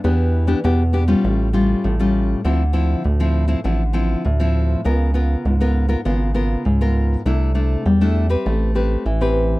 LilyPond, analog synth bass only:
\new Staff \with { instrumentName = "Analog synth bass" } { \clef bass \time 4/4 \key d \dorian \tempo 4 = 100 e,4 e,4 a,,4 a,,4 | d,4 d,4 a,,4 d,4 | des,4 des,4 aes,,4 des,4 | c,4 e,4 a,,4 a,,4 | }